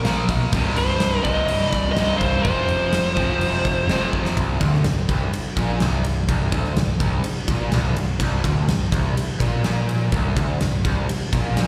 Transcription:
0.03 0.20 A#1 medium
0.03 0.50 A#2 medium
0.03 0.51 F3 medium
0.03 0.52 A#3 medium
0.03 snare loud
0.03 crash medium
0.29 0.44 B1 medium
0.29 kick medium
0.29 snare soft
0.29 crash medium
0.52 0.68 C1 medium
0.52 1.23 C2 loud
0.52 1.23 G2 loud
0.52 1.21 C3 loud
0.52 kick loud
0.52 crash medium
0.76 0.92 C1 medium
0.76 1.23 C5 loud
0.76 crash medium
1.00 1.16 C1 medium
1.00 snare loud
1.00 crash medium
1.23 1.40 C1 medium
1.23 1.95 C2 medium
1.23 1.95 G2 medium
1.23 1.94 C3 medium
1.23 1.72 D#5 loud
1.23 kick medium
1.23 crash medium
1.48 1.63 C1 loud
1.48 crash medium
1.72 1.88 C1 medium
1.72 1.91 D5 loud
1.72 kick medium
1.72 crash medium
1.92 2.17 D#5 loud
1.96 2.12 C1 medium
1.96 2.43 C2 medium
1.96 2.44 G2 medium
1.96 2.44 C3 medium
1.96 snare loud
1.96 crash medium
2.17 2.36 C1 medium
2.17 2.42 C5 medium
2.17 kick medium
2.17 crash medium
2.43 2.60 F1 medium
2.43 3.14 F2 medium
2.43 3.15 C3 loud
2.43 3.14 F3 loud
2.43 4.08 C5 medium
2.43 kick loud
2.43 crash medium
2.68 2.84 F1 medium
2.68 crash medium
2.92 3.08 F1 medium
2.92 snare loud
2.92 crash medium
3.15 3.32 C1 medium
3.15 3.87 F2 medium
3.15 3.88 C3 medium
3.15 3.86 F3 medium
3.15 kick medium
3.15 crash medium
3.39 3.55 F1 loud
3.39 crash medium
3.65 3.80 F1 medium
3.65 kick medium
3.65 crash medium
3.87 4.03 F1 medium
3.87 4.35 F2 medium
3.87 4.35 C3 medium
3.87 snare loud
3.87 crash medium
3.92 4.37 F3 medium
4.13 4.28 F1 medium
4.13 kick medium
4.25 snare medium
4.36 4.59 C1 medium
4.36 4.60 C2 loud
4.36 kick medium
4.36 ride loud
4.61 4.83 D1 medium
4.61 4.84 D2 loud
4.61 kick loud
4.61 ride medium
4.73 snare soft
4.84 5.06 C1 medium
4.84 5.04 C2 medium
4.84 snare loud
4.84 ride loud
5.09 5.31 C1 medium
5.09 5.32 C2 loud
5.09 kick loud
5.09 ride medium
5.33 muted picked electric bass stroke soft
5.33 muted overdriven electric guitar stroke medium
5.33 ride loud
5.57 5.79 A#1 medium
5.57 5.80 A#2 loud
5.57 kick loud
5.57 ride medium
5.80 6.03 C1 medium
5.80 6.04 C2 loud
5.80 snare loud
5.80 ride medium
6.04 6.27 C1 medium
6.04 6.25 C2 medium
6.04 ride medium
6.29 6.51 C1 medium
6.29 6.52 C2 loud
6.29 kick loud
6.29 ride loud
6.52 6.74 D1 medium
6.52 6.76 D2 loud
6.52 kick loud
6.52 ride medium
6.64 snare soft
6.75 6.98 C1 medium
6.75 6.96 C2 medium
6.75 snare loud
6.75 ride loud
7.00 7.21 C1 medium
7.00 7.24 C2 loud
7.00 kick loud
7.00 ride medium
7.21 muted picked electric bass stroke soft
7.21 muted overdriven electric guitar stroke medium
7.21 ride loud
7.48 7.69 A#1 medium
7.48 7.72 A#2 loud
7.48 kick loud
7.48 ride medium
7.69 7.93 C1 medium
7.69 7.96 C2 loud
7.69 snare loud
7.69 ride medium
7.94 8.17 C1 medium
7.94 8.16 C2 medium
7.94 ride medium
8.19 8.42 C1 medium
8.19 8.44 C2 loud
8.19 kick loud
8.19 ride loud
8.44 8.66 D1 medium
8.44 8.67 D2 loud
8.44 kick loud
8.44 ride medium
8.68 8.90 C1 medium
8.68 8.87 C2 medium
8.68 snare loud
8.68 ride loud
8.92 9.14 C1 medium
8.92 9.16 C2 loud
8.92 kick loud
8.92 ride medium
9.15 muted picked electric bass stroke soft
9.15 muted overdriven electric guitar stroke medium
9.15 ride loud
9.40 9.62 A#1 medium
9.40 9.63 A#2 loud
9.40 kick loud
9.40 ride medium
9.63 10.08 A#1 medium
9.63 10.12 A#2 loud
9.63 snare medium
9.63 ride medium
9.89 ride medium
10.12 10.35 C1 medium
10.12 10.35 C2 loud
10.12 kick loud
10.12 ride medium
10.36 10.59 D1 loud
10.36 10.59 D2 medium
10.36 kick loud
10.36 ride medium
10.61 10.83 C1 medium
10.61 10.80 C2 medium
10.61 snare loud
10.61 ride medium
10.85 11.07 C1 medium
10.85 11.08 C2 loud
10.85 kick loud
10.85 ride medium
11.09 muted overdriven electric guitar stroke medium
11.09 muted picked electric bass stroke soft
11.09 ride loud
11.33 11.55 A#1 medium
11.33 11.56 A#2 loud
11.33 kick loud
11.33 ride medium
11.57 11.67 A#1 medium
11.57 11.67 A#2 loud
11.57 snare loud
11.57 ride loud

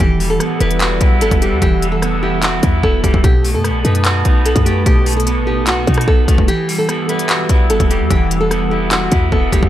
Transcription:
0.00 0.39 E1 loud
0.00 1.01 E3 loud
0.00 3.21 G3 medium
0.00 0.28 G4 loud
0.00 3.21 F#5 medium
0.00 3.21 E6 medium
0.20 1.21 G3 medium
0.20 open hi-hat medium
0.30 0.59 A4 medium
0.40 1.20 B3 medium
0.40 cross-stick medium
0.40 closed hi-hat medium
0.60 0.99 E1 loud
0.60 1.00 E4 medium
0.60 1.18 B4 medium
0.60 closed hi-hat medium
0.71 closed hi-hat medium
0.80 1.82 F#4 loud
0.80 clap loud
0.80 closed hi-hat medium
1.01 1.23 B1 loud
1.01 2.02 E4 medium
1.01 kick medium
1.01 closed hi-hat medium
1.21 1.31 G1 loud
1.21 2.01 B3 medium
1.21 1.41 A4 medium
1.21 closed hi-hat loud
1.31 1.53 E1 loud
1.31 kick loud
1.31 closed hi-hat medium
1.42 1.81 G3 medium
1.42 1.60 G4 medium
1.42 closed hi-hat medium
1.52 1.61 E2 loud
1.62 2.59 E1 loud
1.62 2.63 E3 loud
1.62 1.90 G4 loud
1.62 kick loud
1.62 closed hi-hat medium
1.82 2.84 G3 medium
1.82 closed hi-hat medium
1.92 2.21 A4 medium
2.02 2.82 B3 medium
2.02 cross-stick medium
2.02 closed hi-hat medium
2.23 2.62 E4 medium
2.23 2.42 G4 medium
2.42 2.81 F#4 medium
2.42 3.24 F#4 medium
2.42 clap loud
2.42 closed hi-hat medium
2.63 2.83 E2 loud
2.63 3.24 E4 medium
2.63 kick medium
2.63 closed hi-hat medium
2.83 3.03 E1 loud
2.83 3.24 B3 medium
2.83 3.02 A4 medium
2.83 kick medium
3.04 3.13 E1 loud
3.04 3.24 G3 medium
3.04 3.23 G4 medium
3.04 kick loud
3.04 closed hi-hat medium
3.14 3.23 E1 loud
3.14 kick loud
3.24 3.56 B1 loud
3.24 4.25 B2 loud
3.24 3.53 G4 loud
3.24 6.45 B4 medium
3.24 6.45 A5 medium
3.24 6.45 D#6 medium
3.24 kick loud
3.24 closed hi-hat medium
3.44 4.46 A3 medium
3.44 open hi-hat medium
3.54 3.71 F#2 loud
3.54 3.83 A4 medium
3.64 4.44 B3 medium
3.64 cross-stick medium
3.64 closed hi-hat medium
3.70 3.84 B1 loud
3.85 4.24 F#2 loud
3.85 4.24 D#4 medium
3.85 4.42 B4 medium
3.85 closed hi-hat medium
3.95 closed hi-hat medium
4.04 5.06 F#4 loud
4.04 clap loud
4.04 closed hi-hat medium
4.25 4.54 B1 loud
4.25 5.27 D#4 medium
4.25 kick medium
4.25 closed hi-hat medium
4.45 5.26 B3 medium
4.45 4.65 A4 medium
4.45 closed hi-hat loud
4.56 4.85 F#2 loud
4.56 kick loud
4.56 closed hi-hat medium
4.66 5.05 A3 medium
4.66 4.85 G4 medium
4.66 closed hi-hat medium
4.86 5.38 B1 loud
4.86 5.88 B2 loud
4.86 5.15 G4 loud
4.86 kick loud
4.86 closed hi-hat medium
5.06 6.08 A3 medium
5.06 closed hi-hat soft
5.06 open hi-hat medium
5.13 5.45 A4 medium
5.13 closed hi-hat medium
5.20 closed hi-hat medium
5.27 6.07 B3 loud
5.27 closed hi-hat medium
5.37 5.64 A1 loud
5.47 5.86 D#4 medium
5.47 5.66 G4 medium
5.62 5.86 B1 loud
5.67 6.48 F#4 loud
5.67 6.05 F#4 medium
5.67 clap loud
5.67 closed hi-hat medium
5.87 6.07 B2 loud
5.87 6.48 D#4 medium
5.87 kick medium
5.87 closed hi-hat soft
5.94 cross-stick loud
5.94 closed hi-hat medium
6.01 closed hi-hat medium
6.07 6.27 B1 loud
6.07 6.48 B3 medium
6.07 6.27 A4 medium
6.07 kick medium
6.28 6.38 B1 loud
6.28 6.48 A3 medium
6.28 6.47 F#4 medium
6.28 kick medium
6.28 closed hi-hat medium
6.38 6.48 E1 loud
6.38 kick loud
6.48 7.50 E3 loud
6.48 9.69 G3 medium
6.48 6.77 G4 loud
6.48 9.69 F#5 medium
6.48 9.69 E6 medium
6.48 closed hi-hat medium
6.68 7.70 G3 medium
6.68 open hi-hat medium
6.78 7.07 A4 medium
6.89 7.69 B3 medium
6.89 cross-stick medium
6.89 closed hi-hat medium
7.09 7.48 E4 medium
7.09 7.66 B4 medium
7.09 closed hi-hat medium
7.19 closed hi-hat medium
7.29 8.31 F#4 loud
7.29 clap loud
7.29 closed hi-hat medium
7.49 7.71 B1 loud
7.49 8.51 E4 medium
7.49 kick medium
7.49 closed hi-hat medium
7.70 7.80 G1 loud
7.70 8.50 B3 medium
7.70 7.89 A4 medium
7.70 closed hi-hat medium
7.80 8.02 E1 loud
7.80 kick loud
7.80 closed hi-hat medium
7.90 8.30 G3 medium
7.90 8.09 G4 medium
7.90 closed hi-hat medium
8.00 8.10 E2 loud
8.10 9.08 E1 loud
8.10 9.12 E3 loud
8.10 8.39 G4 loud
8.10 kick loud
8.10 closed hi-hat medium
8.31 9.32 G3 medium
8.31 closed hi-hat medium
8.41 8.69 A4 medium
8.51 9.31 B3 medium
8.51 cross-stick medium
8.51 closed hi-hat medium
8.71 9.11 E4 medium
8.71 8.90 G4 medium
8.91 9.29 F#4 medium
8.91 9.69 F#4 medium
8.91 clap loud
8.91 closed hi-hat medium
9.12 9.31 E2 loud
9.12 9.69 E4 medium
9.12 kick medium
9.12 closed hi-hat medium
9.32 9.52 E1 loud
9.32 9.69 B3 medium
9.32 9.51 A4 medium
9.32 kick medium
9.52 9.62 E1 loud
9.52 9.69 G3 medium
9.52 9.69 G4 medium
9.52 kick medium
9.52 closed hi-hat medium
9.63 9.69 E1 loud
9.63 kick loud

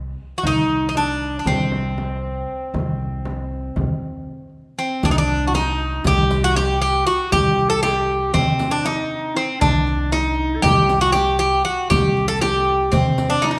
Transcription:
0.00 0.14 C2 medium
0.38 0.44 F#4 medium
0.43 1.42 C2 medium
0.43 0.92 D#4 medium
0.43 0.88 D#4 medium
0.43 darbuka dum loud
0.43 frame drum medium
0.89 0.95 D#4 medium
0.95 1.47 D4 medium
0.95 1.38 D4 medium
0.95 darbuka tek medium
0.95 frame drum medium
1.21 darbuka ka soft
1.39 1.46 D4 medium
1.45 2.44 C2 medium
1.45 4.52 C4 medium
1.45 4.49 C4 medium
1.45 frame drum medium
1.45 darbuka dum medium
1.72 darbuka tek medium
1.72 frame drum medium
1.98 darbuka tek medium
1.98 frame drum medium
2.74 3.72 C2 medium
2.74 darbuka dum medium
2.74 frame drum medium
3.00 darbuka ka soft
3.25 darbuka tek medium
3.25 frame drum medium
3.51 darbuka ka soft
3.76 3.87 C2 medium
3.76 darbuka dum medium
3.76 frame drum medium
4.78 5.05 C4 medium
4.78 5.04 C4 medium
5.03 6.01 C2 medium
5.03 5.17 D4 medium
5.03 5.11 D4 medium
5.03 riq medium
5.03 darbuka dum loud
5.03 frame drum medium
5.11 5.18 D#4 medium
5.18 5.56 D4 medium
5.18 5.47 D4 medium
5.29 riq soft
5.47 5.54 F#4 medium
5.54 6.06 D#4 medium
5.54 6.07 D#4 medium
5.54 riq soft
5.54 darbuka tek medium
5.54 frame drum medium
5.81 darbuka ka soft
6.04 7.03 C2 medium
6.04 6.45 G4 medium
6.04 6.44 G4 loud
6.04 riq medium
6.04 darbuka dum loud
6.04 frame drum medium
6.31 riq soft
6.31 darbuka tek medium
6.31 frame drum medium
6.43 6.57 F#4 medium
6.43 6.56 F#4 loud
6.55 6.80 G4 medium
6.55 riq soft
6.55 darbuka tek medium
6.55 frame drum medium
6.81 7.07 G4 medium
6.81 7.06 G4 medium
6.81 darbuka ka soft
7.05 7.33 F#4 medium
7.05 7.32 F#4 medium
7.05 darbuka ka soft
7.31 8.30 C2 medium
7.31 7.70 G4 medium
7.31 7.69 G4 medium
7.31 riq medium
7.31 frame drum medium
7.31 darbuka dum loud
7.58 riq soft
7.68 7.81 A4 medium
7.68 7.82 A4 medium
7.82 8.35 G4 medium
7.82 8.36 G4 medium
7.82 riq soft
7.82 darbuka tek medium
7.82 frame drum medium
8.33 9.32 C3 medium
8.33 8.72 C4 medium
8.33 8.73 C4 medium
8.33 riq medium
8.33 darbuka dum loud
8.33 frame drum medium
8.59 riq medium
8.59 darbuka tek medium
8.59 frame drum medium
8.71 8.85 D4 medium
8.83 9.36 D#4 medium
8.83 riq soft
8.83 darbuka tek medium
8.83 frame drum medium
9.11 darbuka ka soft
9.35 9.61 C4 medium
9.35 riq soft
9.35 darbuka ka soft
9.60 10.60 C2 medium
9.60 10.13 D4 medium
9.60 10.12 D4 medium
9.60 riq medium
9.60 frame drum medium
9.60 darbuka dum loud
9.87 riq soft
10.12 10.57 D#4 medium
10.12 10.65 D#4 medium
10.12 riq soft
10.12 darbuka tek medium
10.12 frame drum medium
10.38 darbuka ka soft
10.56 10.65 A4 medium
10.62 11.62 C2 medium
10.62 11.01 G4 loud
10.62 11.03 G4 medium
10.62 riq medium
10.62 darbuka dum loud
10.62 frame drum loud
10.89 riq medium
10.89 darbuka tek medium
10.89 frame drum medium
11.01 11.12 F#4 loud
11.01 11.17 F#4 medium
11.12 11.37 G4 loud
11.12 11.66 G4 medium
11.12 riq soft
11.12 darbuka tek medium
11.12 frame drum medium
11.39 11.64 G4 medium
11.39 darbuka ka soft
11.65 11.90 F#4 medium
11.65 riq soft
11.65 darbuka ka soft
11.90 12.89 C2 loud
11.90 12.28 G4 loud
11.90 12.26 G4 medium
11.90 riq medium
11.90 frame drum medium
11.90 darbuka dum medium
12.17 riq soft
12.17 darbuka ka soft
12.28 12.41 A4 medium
12.28 12.43 A4 medium
12.41 12.92 G4 medium
12.41 12.94 G4 medium
12.41 riq soft
12.41 darbuka tek medium
12.41 frame drum medium
12.68 darbuka ka soft
12.92 13.59 C3 medium
12.92 13.32 C4 medium
12.92 riq medium
12.92 frame drum medium
12.92 darbuka dum loud
13.18 riq medium
13.18 darbuka tek medium
13.18 frame drum medium
13.30 13.44 D4 medium
13.42 13.56 D4 medium
13.42 13.50 D#4 medium
13.42 riq medium
13.42 darbuka tek medium
13.42 frame drum medium
13.51 13.57 D#4 medium
13.56 13.59 D#4 medium

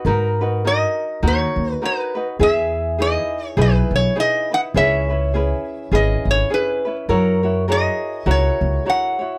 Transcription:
0.05 0.81 G#2 medium
0.05 0.40 D#4 medium
0.05 0.41 F#4 medium
0.05 2.47 A#4 medium
0.05 0.40 A#4 medium
0.05 0.40 B4 medium
0.41 0.64 D#4 soft
0.41 0.65 F#4 medium
0.41 0.65 B4 medium
0.65 1.22 D#4 medium
0.65 1.22 F#4 medium
0.65 1.21 A#4 medium
0.65 1.26 D#5 medium
1.23 1.45 D#2 loud
1.23 1.82 D#4 medium
1.23 1.82 F#4 medium
1.23 1.80 A#4 medium
1.28 1.73 C#5 medium
1.56 1.72 D#2 medium
1.73 1.85 B4 medium
1.82 2.15 D#4 medium
1.82 2.15 F#4 medium
1.82 2.16 A#4 medium
1.82 2.14 B4 medium
1.82 2.27 B4 medium
2.15 2.40 D#4 soft
2.15 2.39 F#4 soft
2.15 2.40 B4 medium
2.39 3.16 E2 medium
2.39 2.99 E4 medium
2.39 2.98 G#4 medium
2.39 4.82 G#4 medium
2.39 2.98 B4 medium
2.39 3.01 E5 loud
2.98 3.56 D#4 medium
2.98 3.58 E4 medium
2.98 3.57 G#4 medium
2.98 3.58 B4 medium
2.98 3.48 D#5 medium
3.48 3.61 C#5 medium
3.57 3.79 B1 loud
3.57 4.15 D#4 medium
3.57 4.16 E4 medium
3.57 4.15 G#4 medium
3.57 4.17 B4 medium
3.61 3.95 B4 medium
3.91 4.07 B1 medium
3.96 4.19 C#5 medium
4.16 4.50 D#4 medium
4.16 4.51 E4 medium
4.16 4.50 G#4 medium
4.16 4.50 B4 medium
4.20 4.53 D#5 loud
4.51 4.75 D#4 soft
4.51 4.75 E4 soft
4.51 4.75 B4 medium
4.51 4.60 F#5 loud
4.74 5.51 C#2 medium
4.74 5.09 C#4 medium
4.74 5.10 E4 medium
4.74 5.09 G#4 medium
4.74 5.08 B4 medium
4.74 7.07 C#5 loud
4.74 5.95 E5 loud
5.09 5.33 C#4 soft
5.09 5.34 E4 soft
5.09 5.34 B4 soft
5.34 5.92 C#4 medium
5.34 5.93 E4 medium
5.34 5.91 G#4 medium
5.34 5.93 B4 medium
5.92 6.14 G#1 medium
5.92 6.51 C#4 medium
5.92 6.51 E4 medium
5.92 6.49 G#4 medium
5.92 6.51 B4 medium
5.92 6.29 D#5 medium
6.25 6.42 G#1 medium
6.31 6.54 C#5 medium
6.50 6.85 C#4 medium
6.50 6.85 E4 medium
6.50 6.85 G#4 medium
6.50 6.84 B4 medium
6.50 6.96 B4 medium
6.85 7.09 C#4 soft
6.85 7.08 E4 soft
6.85 7.10 B4 medium
7.09 7.85 F#2 medium
7.09 7.44 E4 medium
7.09 7.43 F#4 medium
7.09 7.43 A#4 medium
7.09 7.64 A#4 medium
7.09 7.42 C#5 medium
7.43 7.67 E4 soft
7.43 7.68 F#4 medium
7.43 7.68 C#5 medium
7.68 8.25 E4 medium
7.68 8.26 F#4 medium
7.68 9.16 G#4 medium
7.68 8.25 A#4 medium
7.68 8.26 C#5 medium
7.68 8.30 D#5 medium
8.26 8.49 C#2 loud
8.26 8.85 E4 medium
8.26 8.86 F#4 medium
8.26 8.84 A#4 medium
8.26 8.86 C#5 medium
8.31 8.89 C#5 medium
8.61 8.77 C#2 medium
8.86 9.20 E4 medium
8.86 9.20 F#4 medium
8.86 9.19 A#4 medium
8.86 9.18 C#5 medium
8.90 9.31 F#5 loud
9.19 9.38 E4 soft
9.19 9.38 F#4 soft
9.19 9.38 C#5 medium

